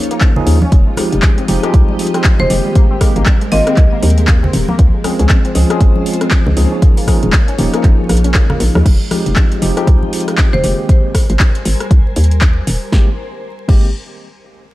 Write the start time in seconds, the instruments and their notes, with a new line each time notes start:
Already playing: tine electric piano F3 A#3 C#4 D#4 G#4, string machine F3 D#4 F4 C#5
0.03 closed hi-hat
0.11 synth pluck A#3, closed hi-hat
0.21 synth pluck F3, kick, clap, closed hi-hat
0.36 tine electric piano F3 A#3 C#4 D#4 G#4, synth pluck G#3, low conga
0.47 fm bass D#2, synth pluck A#3, open hi-hat, muted conga
0.62 synth pluck C#4, high conga
0.72 fm bass F1, synth pluck G#3, string machine G#3 G4 D#5, kick, closed hi-hat
0.87 synth pluck G#3
0.97 tine electric piano F3 G#3 C4 D#4 G4, synth pluck F3, cross-stick, open hi-hat, high conga
1.12 fm bass F1, synth pluck G3, closed hi-hat
1.22 synth pluck G#3, kick, clap, closed hi-hat
1.38 synth pluck C4, closed hi-hat
1.48 fm bass F1, tine electric piano F3 G#3 C4 D#4 G4, synth pluck G#3, open hi-hat
1.63 tine electric piano F3 G#3 C4 D#4 G4, synth pluck G#3, cross-stick, closed hi-hat
1.74 fm bass C2, synth pluck F3, kick, closed hi-hat
1.88 synth pluck G3, high conga
1.99 synth pluck G#3, open hi-hat
2.07 closed hi-hat
2.14 synth pluck C4, cross-stick, closed hi-hat
2.24 synth pluck G#3, kick, clap, closed hi-hat
2.39 fm bass F1, synth pluck G#3, marimba C5, low conga
2.50 fm bass F1, tine electric piano D#3 G#3 A#3 C4 G4, synth pluck F3, open hi-hat
2.65 synth pluck G3
2.75 synth pluck A#3, string machine C4 A#4, kick, closed hi-hat
2.91 synth pluck C4
3.01 tine electric piano D#3 G#3 A#3 C4 G4, synth pluck A#3, kick, cross-stick, open hi-hat, high conga
3.16 fm bass G#1, synth pluck A#3, closed hi-hat, muted conga
3.26 synth pluck G3, kick, clap, closed hi-hat
3.41 synth pluck G#3, closed hi-hat
3.51 fm bass G#1, tine electric piano D#3 G#3 A#3 C4 F4, synth pluck A#3, marimba D#5, open hi-hat
3.66 tine electric piano D#3 G#3 A#3 C4 G4, synth pluck C4, cross-stick, closed hi-hat
3.77 fm bass C2, synth pluck A#3, kick, clap, closed hi-hat
3.92 synth pluck A#3
4.03 fm bass D#2, synth pluck G3, open hi-hat, high conga
4.10 closed hi-hat
4.18 synth pluck G#3, closed hi-hat
4.27 synth pluck A#3, kick, clap, closed hi-hat
4.43 synth pluck C4, low conga
4.53 fm bass D#1, synth pluck A#3, open hi-hat, muted conga
4.68 synth pluck A#3, high conga
4.79 fm bass C#2, synth pluck F3, string machine F4 C5, kick, closed hi-hat
4.94 synth pluck G#3
5.04 tine electric piano F3 G#3 C4 C#4 G#4, synth pluck C4, cross-stick, open hi-hat, high conga
5.19 fm bass C#2, synth pluck C#4, closed hi-hat
5.29 synth pluck C4, kick, clap, closed hi-hat
5.45 synth pluck C4, closed hi-hat
5.55 fm bass C#2, tine electric piano F3 G#3 C4 C#4 G#4, synth pluck F3, open hi-hat
5.70 tine electric piano F3 G#3 C4 C#4 G#4, synth pluck G#3, cross-stick, closed hi-hat
5.81 fm bass G#1, synth pluck C4, kick, closed hi-hat
5.96 synth pluck C#4, high conga
6.06 synth pluck C4, open hi-hat
6.14 closed hi-hat
6.21 synth pluck C4, cross-stick, closed hi-hat
6.31 synth pluck F3, kick, clap, closed hi-hat
6.46 fm bass C#2, synth pluck G#3, low conga
6.57 fm bass C#2, tine electric piano F3 A#3 C#4 D#4 G#4, synth pluck C4, open hi-hat
6.72 synth pluck C#4
6.82 synth pluck A#3, string machine D#4 C#5, kick, closed hi-hat
6.97 synth pluck A#3, open hi-hat
7.07 tine electric piano F3 A#3 C#4 D#4 G#4, synth pluck F3, kick, cross-stick, open hi-hat, high conga
7.23 fm bass D#1, synth pluck G#3, closed hi-hat, muted conga
7.33 synth pluck A#3, kick, clap, closed hi-hat
7.48 synth pluck C#4, closed hi-hat
7.58 fm bass D#1, tine electric piano F3 A#3 C#4 D#4 G4, synth pluck A#3, open hi-hat
7.73 tine electric piano F3 A#3 C#4 D#4 G#4, synth pluck A#3, cross-stick, closed hi-hat
7.83 fm bass G#1, synth pluck F3, kick, clap, closed hi-hat
7.99 synth pluck G#3
8.09 fm bass A#1, synth pluck A#3, cross-stick, open hi-hat, high conga
8.17 closed hi-hat
8.24 synth pluck C#4, closed hi-hat
8.34 fm bass G#1, synth pluck A#3, kick, cross-stick, clap, closed hi-hat
8.50 synth pluck A#3, cross-stick, low conga
8.60 fm bass A#1, synth pluck F3, open hi-hat, muted conga
8.75 fm bass D#2, synth pluck G#3, cross-stick, high conga
8.86 fm bass F1, string machine G#3 F4 D#5 G5, kick, closed hi-hat, crash
9.11 tine electric piano F3 G#3 C4 D#4 G4, cross-stick, open hi-hat, high conga
9.26 fm bass F1, closed hi-hat
9.36 kick, clap, closed hi-hat
9.52 closed hi-hat
9.62 fm bass F1, tine electric piano F3 G#3 C4 D#4 G4, open hi-hat
9.76 tine electric piano F3 G#3 C4 D#4 G4, cross-stick, closed hi-hat
9.87 fm bass C2, kick, closed hi-hat
10.03 high conga
10.13 open hi-hat
10.20 closed hi-hat
10.28 cross-stick, closed hi-hat
10.38 kick, clap, closed hi-hat
10.53 fm bass F1, marimba C5, low conga
10.63 fm bass F1, tine electric piano D#3 G#3 A#3 C4 G4, open hi-hat
10.89 string machine G3 A#4 C5 G#5, kick, closed hi-hat
11.14 kick, cross-stick, open hi-hat
11.30 fm bass G#1, closed hi-hat
11.39 kick, clap, closed hi-hat
11.55 closed hi-hat
11.65 fm bass G#1, open hi-hat
11.80 cross-stick, closed hi-hat
11.91 fm bass C2, kick, closed hi-hat
12.16 fm bass D#2, open hi-hat
12.24 closed hi-hat
12.31 closed hi-hat
12.41 kick, clap, closed hi-hat
12.67 fm bass D#1, open hi-hat
12.92 fm bass G#1, tine electric piano D#3 G#3 A#3 C4 G4, string machine G4 A#4 C5 G#5, kick, snare
13.68 fm bass G#1, tine electric piano D#3 G#3 A#3 C4 G4, kick, crash